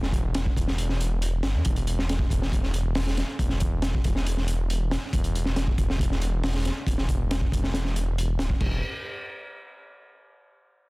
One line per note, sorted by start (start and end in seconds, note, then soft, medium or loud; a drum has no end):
0.00 0.50 E1 medium
0.00 snare medium
0.12 kick loud
0.12 closed hi-hat medium
0.34 snare loud
0.34 closed hi-hat medium
0.46 kick medium
0.56 1.43 E1 loud
0.56 kick loud
0.56 closed hi-hat medium
0.68 snare medium
0.78 closed hi-hat medium
0.89 snare soft
1.00 closed hi-hat medium
1.22 closed hi-hat medium
1.43 1.56 G1 medium
1.43 snare loud
1.43 closed hi-hat medium
1.55 1.62 E2 medium
1.65 2.25 E1 medium
1.65 kick loud
1.65 closed hi-hat medium
1.76 closed hi-hat soft
1.87 closed hi-hat medium
1.99 snare medium
2.09 snare loud
2.09 closed hi-hat medium
2.19 kick loud
2.30 3.22 E1 loud
2.30 kick loud
2.30 closed hi-hat medium
2.42 snare medium
2.52 kick loud
2.52 closed hi-hat medium
2.63 snare soft
2.74 closed hi-hat medium
2.95 snare loud
2.95 open hi-hat medium
3.07 snare medium
3.17 snare soft
3.17 closed hi-hat medium
3.39 3.98 E1 medium
3.39 kick loud
3.39 closed hi-hat medium
3.49 snare soft
3.60 kick medium
3.60 closed hi-hat medium
3.82 snare loud
3.82 closed hi-hat medium
3.95 kick medium
4.04 4.97 E1 loud
4.04 kick medium
4.04 closed hi-hat medium
4.16 snare medium
4.26 closed hi-hat medium
4.37 snare soft
4.48 closed hi-hat medium
4.70 closed hi-hat medium
4.91 snare loud
4.91 closed hi-hat medium
5.13 5.72 E1 loud
5.13 kick loud
5.13 closed hi-hat medium
5.24 closed hi-hat soft
5.35 closed hi-hat medium
5.45 snare medium
5.56 snare loud
5.56 closed hi-hat medium
5.67 kick medium
5.78 6.70 E1 loud
5.78 kick medium
5.78 closed hi-hat medium
5.90 snare medium
5.99 kick loud
5.99 closed hi-hat medium
6.12 snare soft
6.21 closed hi-hat medium
6.44 snare loud
6.44 open hi-hat medium
6.54 snare soft
6.65 snare soft
6.65 closed hi-hat medium
6.87 7.46 E1 medium
6.87 kick loud
6.87 closed hi-hat medium
6.98 snare soft
7.09 kick medium
7.09 closed hi-hat medium
7.31 snare loud
7.31 closed hi-hat loud
7.41 kick loud
7.52 8.39 E1 loud
7.52 kick loud
7.52 closed hi-hat medium
7.64 snare medium
7.74 snare loud
7.74 closed hi-hat medium
7.85 snare soft
7.96 closed hi-hat medium
8.18 closed hi-hat medium
8.39 8.53 D1 loud
8.39 snare loud
8.39 closed hi-hat medium
8.50 kick medium
8.60 8.81 E1 medium
8.60 kick loud
8.60 crash medium